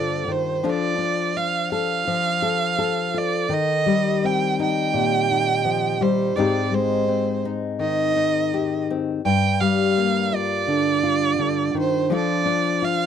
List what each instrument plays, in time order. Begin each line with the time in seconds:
Already playing: nylon-string guitar G2 D3 G3 A#3 F4 A4, vibraphone A4 C5, violin D5
0.28 nylon-string guitar D#3
0.32 violin C5
0.63 nylon-string guitar F3 D4 F4 A4
0.69 violin D5
0.98 nylon-string guitar D4
1.36 nylon-string guitar F4, violin F5
1.72 nylon-string guitar A4, violin F5
2.07 nylon-string guitar F3
2.42 nylon-string guitar A4
2.78 nylon-string guitar A4
3.14 nylon-string guitar F4, vibraphone A4
3.18 violin D5
3.49 nylon-string guitar D#3
3.53 violin D#5
3.86 nylon-string guitar G3
4.24 nylon-string guitar C4, violin G5
4.59 nylon-string guitar D#4, violin G5
4.93 nylon-string guitar A#2, vibraphone G4
5.31 nylon-string guitar D#4
5.64 nylon-string guitar F3
6.01 nylon-string guitar G3, violin C5
6.36 nylon-string guitar G#2 G#3 C4 D#4 G4, violin D5
6.72 nylon-string guitar G#3, violin C5
7.08 nylon-string guitar C4
7.45 nylon-string guitar D#4
7.79 nylon-string guitar D#3, violin D#5
8.16 nylon-string guitar D#4
8.54 nylon-string guitar G4
8.90 nylon-string guitar C4
9.25 nylon-string guitar G2, violin G5
9.60 nylon-string guitar G3, violin F5
9.98 nylon-string guitar A#3
10.33 nylon-string guitar F4, violin D5
10.67 nylon-string guitar D3, vibraphone D4
11.03 nylon-string guitar F4
11.39 nylon-string guitar D3
11.74 nylon-string guitar D#3
11.79 violin C5
12.10 nylon-string guitar F3 D4 F4 A4
12.15 violin D5
12.46 nylon-string guitar D4
12.82 nylon-string guitar F4, violin F5